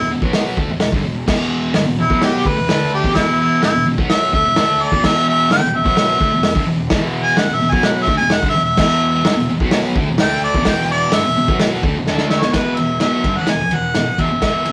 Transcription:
0.00 distorted electric guitar B2
0.11 distorted electric guitar E2 B2
0.22 distorted electric guitar B2 F#3 B3, kick
0.33 snare, open hi-hat
0.57 distorted electric guitar D3 A3, kick
0.70 distorted electric guitar E2 B2
0.80 snare, open hi-hat
0.92 distorted electric guitar G2 D3, kick
1.04 distorted electric guitar E2 B2
1.26 distorted electric guitar E2 B2 E3, kick, snare, crash
1.74 distorted electric guitar G2 D3, snare, open hi-hat
1.86 distorted electric guitar E2 B2
1.98 distorted electric guitar E2 B2, harmonica E4
2.09 distorted electric guitar B2 F#3 B3, kick
2.21 harmonica G4, snare, open hi-hat
2.45 distorted electric guitar D3 A3, harmonica B4, kick
2.57 distorted electric guitar E2 B2
2.68 distorted electric guitar D3 A3 D4, snare, open hi-hat
2.94 harmonica G4
3.03 distorted electric guitar E2 B2, kick
3.14 distorted electric guitar E2 B2 E3, harmonica E4, kick, snare, open hi-hat
3.41 harmonica E4
3.62 distorted electric guitar G2 D3, harmonica E4, snare, open hi-hat
3.74 distorted electric guitar E2 B2
3.86 distorted electric guitar E2 B2
3.98 distorted electric guitar B2 F#3 B3, kick
4.10 harmonica E5, snare, open hi-hat
4.33 distorted electric guitar D3 A3, harmonica E5, kick
4.46 distorted electric guitar E2 B2
4.56 distorted electric guitar D3 A3 D4, snare, open hi-hat
4.82 harmonica D5
4.92 distorted electric guitar E2 B2, kick
5.04 distorted electric guitar E2 B2 E3, harmonica E5, kick, snare, crash
5.29 harmonica E5
5.51 distorted electric guitar G2 D3, harmonica G5, snare, open hi-hat
5.61 distorted electric guitar E2 B2
5.74 distorted electric guitar E2 B2, harmonica E5
5.84 distorted electric guitar B2 F#3 B3, kick
5.97 snare, open hi-hat
6.19 distorted electric guitar D3 A3, kick
6.32 distorted electric guitar E2 B2
6.43 snare, open hi-hat
6.55 distorted electric guitar G2 D3, kick
6.67 distorted electric guitar E2 B2
6.90 distorted electric guitar E2 B2 E3, kick, snare, open hi-hat
7.23 harmonica G#5
7.37 distorted electric guitar G2 D3, harmonica F#5, snare, open hi-hat
7.48 distorted electric guitar E2 B2
7.54 harmonica E5
7.61 distorted electric guitar E2 B2
7.71 distorted electric guitar B2 F#3 B3, harmonica G#5, kick
7.83 harmonica F#5, snare, open hi-hat
8.02 harmonica E5
8.07 distorted electric guitar D3 A3, kick
8.17 distorted electric guitar E2 B2, harmonica G#5
8.30 harmonica F#5, snare, open hi-hat
8.43 distorted electric guitar G2 D3, kick
8.49 harmonica E5
8.55 distorted electric guitar E2 B2
8.64 harmonica E5
8.77 distorted electric guitar E2 B2 E3, kick, snare, crash
9.25 distorted electric guitar G2 D3, snare, open hi-hat
9.37 distorted electric guitar E2 B2
9.50 distorted electric guitar E2 B2
9.60 distorted electric guitar B2 F#3 B3, kick
9.71 snare, open hi-hat
9.96 distorted electric guitar D3 A3, kick
10.09 distorted electric guitar E2 B2
10.18 distorted electric guitar D3 A3 D4, harmonica G5, snare, open hi-hat
10.44 harmonica D5
10.54 distorted electric guitar E2 B2, kick
10.65 distorted electric guitar E2 B2 E3, harmonica G5, kick, snare, open hi-hat
10.91 harmonica D5
11.12 distorted electric guitar G2 D3, harmonica E5, snare, open hi-hat
11.26 distorted electric guitar E2 B2
11.37 distorted electric guitar E2 B2
11.48 distorted electric guitar B2 F#3 B3, kick
11.60 snare, open hi-hat
11.83 distorted electric guitar D3 A3, kick
11.97 distorted electric guitar E2 B2
12.07 distorted electric guitar D3 A3 D4, snare
12.18 snare
12.30 harmonica E5, snare
12.41 distorted electric guitar E2 B2, harmonica C#5, snare
12.52 distorted electric guitar E2 B2, harmonica B4, kick, snare, ride
12.57 distorted electric guitar E3
12.77 distorted electric guitar E2 B2, harmonica E5, ride
13.00 distorted electric guitar B2 F#3 B3, harmonica E5, snare, ride
13.24 distorted electric guitar G2 D3, kick, ride
13.38 distorted electric guitar A2 E3, harmonica F#5
13.47 distorted electric guitar E2 B2, harmonica G#5, snare, ride
13.60 muted distorted electric guitar stroke
13.71 distorted electric guitar E2 B2, harmonica F#5, ride
13.95 distorted electric guitar E2 B2, snare, ride
14.08 muted distorted electric guitar stroke
14.18 distorted electric guitar E2 B2, harmonica E5, kick, ride
14.31 distorted electric guitar E2 B2
14.42 distorted electric guitar E2 B2 E3, kick, snare, ride
14.46 harmonica E5
14.65 distorted electric guitar E2 B2, ride

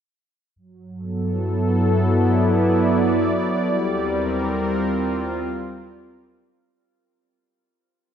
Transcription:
0.56 analog synth bass G2, analog synth pad F#3
0.91 analog synth pad A4
1.01 analog synth pad B3
1.18 analog synth pad E4
1.98 analog synth pad D5
3.65 analog synth bass D#2, analog synth pad G3
3.84 analog synth pad C4
3.90 analog synth pad A#4
4.58 analog synth pad F4

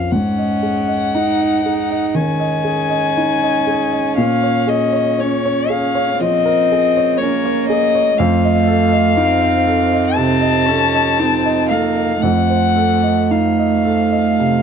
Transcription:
Already playing: grand piano F2 C#4 F4 A#4, violin F5
0.12 grand piano G#2, cello C#4, violin F#5
0.38 grand piano D#5
0.63 grand piano G#4
0.88 grand piano D#5
1.14 cello D#4, grand piano D#4
1.40 grand piano D#5
1.65 cello D#4, grand piano G#4
1.91 grand piano D#5
2.15 grand piano D#3, cello C#4, violin G#5
2.40 grand piano D#5
2.64 grand piano G#4
2.90 grand piano D#5
3.17 grand piano D#4
3.43 grand piano D#5
3.67 grand piano G#4
3.93 grand piano D#5
4.17 grand piano A#2, violin F5
4.43 grand piano C#5
4.67 grand piano G#4, violin D#5
4.93 grand piano C#5
5.18 grand piano C#4, violin C#5
5.45 grand piano C#5
5.70 grand piano G#4, violin F5
5.95 grand piano C#5
6.17 grand piano F3, cello C4, violin D#5
6.46 grand piano A#4
6.72 grand piano G#4
6.97 grand piano C#5
7.18 cello A#3, violin C#5
7.22 grand piano C#4
7.45 grand piano C#5
7.69 grand piano G#4, violin D#5
7.95 grand piano C#5
8.18 grand piano F2, cello A3, violin F5
8.44 grand piano D#5
8.68 grand piano A4
8.93 grand piano D#5
9.17 cello C4, grand piano D#4
9.42 grand piano D#5
9.67 grand piano A4
9.93 grand piano D#5
10.15 grand piano C3, cello C4, violin A5
10.41 grand piano D#5
10.66 cello C#4, grand piano A4
10.94 grand piano D#5
11.19 cello C4, grand piano D#4
11.46 grand piano D#5
11.69 cello A#3, grand piano A4, violin F5
11.97 grand piano D#5
12.22 grand piano F2, cello A3, violin F#5
12.50 grand piano C5
12.76 grand piano A4
13.03 grand piano D#5
13.31 grand piano D#4, violin F5
13.59 grand piano D#5
13.85 grand piano A4
14.12 grand piano D#5
14.40 grand piano C3

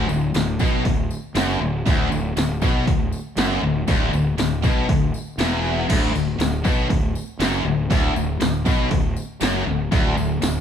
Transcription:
0.09 fingered electric bass D1, distorted electric guitar D2, tambourine
0.34 fingered electric bass D1, distorted electric guitar D2, snare, open hi-hat, tambourine
0.59 fingered electric bass B1, distorted electric guitar B2, kick, tambourine
0.85 fingered electric bass D1, distorted electric guitar D2, kick, open hi-hat
1.11 tambourine
1.35 fingered electric bass F#1, distorted electric guitar F#2, snare, open hi-hat, tambourine
1.49 snare
1.61 fingered electric bass D1, distorted electric guitar D2
1.86 fingered electric bass D1, distorted electric guitar D2, kick, open hi-hat, tambourine
2.12 fingered electric bass D1, distorted electric guitar D2, tambourine
2.37 fingered electric bass D1, distorted electric guitar D2, snare, open hi-hat, tambourine
2.62 fingered electric bass B1, distorted electric guitar B2, kick, tambourine
2.87 fingered electric bass D1, distorted electric guitar D2, kick, open hi-hat
3.12 tambourine
3.37 fingered electric bass F#1, distorted electric guitar F#2, snare, open hi-hat, tambourine
3.52 snare
3.62 fingered electric bass D1, distorted electric guitar D2
3.88 fingered electric bass D1, distorted electric guitar D2, kick, open hi-hat, tambourine
4.13 fingered electric bass D1, distorted electric guitar D2, tambourine
4.37 fingered electric bass D1, distorted electric guitar D2, snare, open hi-hat, tambourine
4.63 fingered electric bass B1, distorted electric guitar B2, kick, tambourine
4.89 fingered electric bass D1, distorted electric guitar D2, kick, open hi-hat
5.14 tambourine
5.38 fingered electric bass E1, distorted electric guitar E2, snare, open hi-hat, tambourine
5.53 snare
5.65 snare, tambourine
5.89 fingered electric bass D1, distorted electric guitar D2, kick, open hi-hat, crash, tambourine
6.13 fingered electric bass D1, distorted electric guitar D2, tambourine
6.39 fingered electric bass D1, distorted electric guitar D2, snare, open hi-hat, tambourine
6.64 fingered electric bass B1, distorted electric guitar B2, kick, tambourine
6.90 fingered electric bass D1, distorted electric guitar D2, kick, open hi-hat
7.15 tambourine
7.39 fingered electric bass F#1, distorted electric guitar F#2, snare, open hi-hat, tambourine
7.54 snare
7.65 fingered electric bass D1, distorted electric guitar D2
7.90 fingered electric bass D1, distorted electric guitar D2, kick, open hi-hat, tambourine
8.15 fingered electric bass D1, distorted electric guitar D2, tambourine
8.40 fingered electric bass D1, distorted electric guitar D2, snare, open hi-hat, tambourine
8.66 fingered electric bass B1, distorted electric guitar B2, kick, tambourine
8.91 fingered electric bass D1, distorted electric guitar D2, kick, open hi-hat
9.16 tambourine
9.41 fingered electric bass F#1, distorted electric guitar F#2, snare, open hi-hat, tambourine
9.66 fingered electric bass D1, distorted electric guitar D2, snare
9.92 fingered electric bass D1, distorted electric guitar D2, kick, open hi-hat, tambourine
10.17 fingered electric bass D1, distorted electric guitar D2, tambourine
10.42 fingered electric bass D1, distorted electric guitar D2, snare, open hi-hat, tambourine

